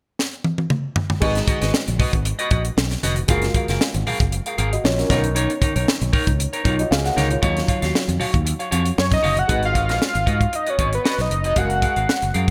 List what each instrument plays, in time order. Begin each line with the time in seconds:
0.19 snare
0.44 high tom
0.58 high tom
0.70 mid tom
0.96 floor tom
1.10 floor tom
1.20 fretless electric bass G#1, grand piano G#3 D#4 F#4 B4, clean electric guitar F#4 B4 D#5, kick, crash
1.35 snare, closed hi-hat
1.48 clean electric guitar F#4 B4 D#5, kick, closed hi-hat, high conga
1.61 fretless electric bass G#1, clean electric guitar F#4 B4 D#5, snare, closed hi-hat
1.74 snare
1.88 fretless electric bass A#1, muted clean electric guitar stroke, closed hi-hat, high conga
1.99 clean electric guitar F#4 B4 D#5, kick, open hi-hat, muted conga, low conga
2.13 fretless electric bass G#1, muted clean electric guitar stroke, kick, closed hi-hat
2.25 muted clean electric guitar stroke, closed hi-hat, muted conga
2.39 clean electric guitar F#4 B4 D#5, closed hi-hat
2.51 fretless electric bass A#1, clean electric guitar F#4 B4 D#5, kick, closed hi-hat, muted conga
2.65 muted clean electric guitar stroke, closed hi-hat
2.77 fretless electric bass B1, snare
2.91 muted clean electric guitar stroke, snare, closed hi-hat
3.03 fretless electric bass F1, clean electric guitar F#4 B4 D#5, snare, closed hi-hat, high conga
3.16 muted clean electric guitar stroke, closed hi-hat, low conga
3.28 fretless electric bass F#1, grand piano G#3 F4 F#4 A#4, clean electric guitar G#4 A#4 F5, kick, closed hi-hat
3.42 snare, closed hi-hat
3.54 clean electric guitar G#4 A#4 F5, kick, closed hi-hat, muted conga, high conga
3.68 fretless electric bass F#1, clean electric guitar G#4 A#4 F5, snare, closed hi-hat
3.81 snare
3.94 fretless electric bass G#1, muted clean electric guitar stroke, closed hi-hat, high conga
4.07 clean electric guitar G#4 A#4 F5, open hi-hat, muted conga, low conga
4.20 fretless electric bass F#1, muted clean electric guitar stroke, kick, closed hi-hat
4.32 muted clean electric guitar stroke, closed hi-hat, muted conga
4.46 clean electric guitar G#4 A#4 F5, closed hi-hat
4.58 fretless electric bass G#1, clean electric guitar G#4 A#4 F5, closed hi-hat, muted conga
4.72 grand piano F#4 D#5, muted clean electric guitar stroke, closed hi-hat
4.84 fretless electric bass A#1, grand piano F4 C#5, snare, muted conga
4.98 grand piano C#4 A#4, muted clean electric guitar stroke, snare, closed hi-hat
5.09 fretless electric bass B1, grand piano B3 D#4 A#4 C#5, clean electric guitar D#4 A#4 C#5, kick, snare, closed hi-hat, muted conga, high conga
5.24 muted clean electric guitar stroke, closed hi-hat, low conga
5.35 clean electric guitar D#4 A#4 C#5, closed hi-hat, muted conga
5.50 closed hi-hat
5.61 clean electric guitar D#4 A#4 C#5, kick, closed hi-hat, high conga
5.76 fretless electric bass B1, clean electric guitar D#4 A#4 C#5, closed hi-hat
5.88 snare
6.01 fretless electric bass B1, muted clean electric guitar stroke, closed hi-hat, high conga
6.13 clean electric guitar D#4 A#4 C#5, kick, open hi-hat, low conga
6.27 fretless electric bass C#2, muted clean electric guitar stroke, kick, closed hi-hat
6.39 muted clean electric guitar stroke, closed hi-hat, muted conga
6.53 clean electric guitar D#4 A#4 C#5, closed hi-hat
6.64 fretless electric bass B1, clean electric guitar D#4 A#4 C#5, grand piano F4 C#5, kick, closed hi-hat
6.78 grand piano F#4 D#5, muted clean electric guitar stroke, closed hi-hat
6.91 fretless electric bass C#2, grand piano G#4 F5, snare
7.04 grand piano A#4 F#5, muted clean electric guitar stroke, snare, closed hi-hat
7.16 fretless electric bass C#2, clean electric guitar D#4 A#4 C#5, snare, closed hi-hat, muted conga, high conga
7.30 grand piano F4 C#5, muted clean electric guitar stroke, closed hi-hat, low conga
7.42 fretless electric bass D#2, grand piano F#3 D#4 F4 C#5, clean electric guitar F#4 C#5 F5, kick, closed hi-hat
7.57 snare, closed hi-hat
7.68 clean electric guitar F#4 C#5 F5, kick, closed hi-hat, high conga
7.82 fretless electric bass D#2, clean electric guitar F#4 C#5 F5, snare, closed hi-hat
7.94 snare, muted conga
8.08 fretless electric bass F2, muted clean electric guitar stroke, closed hi-hat, high conga
8.20 clean electric guitar F#4 C#5 F5, open hi-hat, muted conga, low conga
8.33 fretless electric bass D#2, muted clean electric guitar stroke, kick, closed hi-hat
8.45 muted clean electric guitar stroke, closed hi-hat, muted conga
8.59 clean electric guitar F#4 C#5 F5, closed hi-hat
8.71 fretless electric bass F2, clean electric guitar F#4 C#5 F5, closed hi-hat
8.85 muted clean electric guitar stroke, closed hi-hat
8.98 fretless electric bass F#2, analog synth lead C#5, snare
9.11 analog synth lead D#5, muted clean electric guitar stroke, kick, snare, closed hi-hat, low conga
9.23 fretless electric bass F#1, clean electric guitar F#4 C#5 F5, open hi-hat, high conga
9.37 analog synth lead F#5, muted clean electric guitar stroke, closed hi-hat, low conga
9.47 fretless electric bass G#1, grand piano G#3 D#4 F#4 B4, clean electric guitar F#4 B4 D#5, kick, closed hi-hat
9.63 analog synth lead F5, closed hi-hat
9.74 clean electric guitar F#4 B4 D#5, kick, closed hi-hat
9.88 fretless electric bass A#1, clean electric guitar F#4 B4 D#5, analog synth lead F5, snare, closed hi-hat
10.02 snare
10.14 fretless electric bass G#1, muted clean electric guitar stroke, closed hi-hat
10.26 fretless electric bass G#2, clean electric guitar F#4 B4 D#5, kick, closed hi-hat
10.40 muted clean electric guitar stroke, kick, closed hi-hat
10.52 analog synth lead D#5, muted clean electric guitar stroke, closed hi-hat
10.66 clean electric guitar F#4 B4 D#5, analog synth lead C#5, closed hi-hat
10.79 fretless electric bass G#1, clean electric guitar F#4 B4 D#5, kick, closed hi-hat
10.93 analog synth lead B4, muted clean electric guitar stroke, closed hi-hat
11.04 clean electric guitar F#4 B4 D#5, snare
11.18 fretless electric bass B1, analog synth lead D#5, muted clean electric guitar stroke, snare, closed hi-hat
11.30 fretless electric bass F#1, muted clean electric guitar stroke, closed hi-hat
11.44 fretless electric bass F1, clean electric guitar F#4 B4 D#5, analog synth lead D#5, closed hi-hat
11.55 fretless electric bass F#1, grand piano G#3 F#4 G#4 A#4, clean electric guitar G#4 A#4 F5, analog synth lead F#5, kick, closed hi-hat
11.70 closed hi-hat
11.82 clean electric guitar G#4 A#4 F5, kick, closed hi-hat
11.96 fretless electric bass G#1, clean electric guitar G#4 A#4 F5, closed hi-hat
12.09 snare
12.22 fretless electric bass F#1, muted clean electric guitar stroke, closed hi-hat
12.34 fretless electric bass F#2, clean electric guitar G#4 A#4 F5, closed hi-hat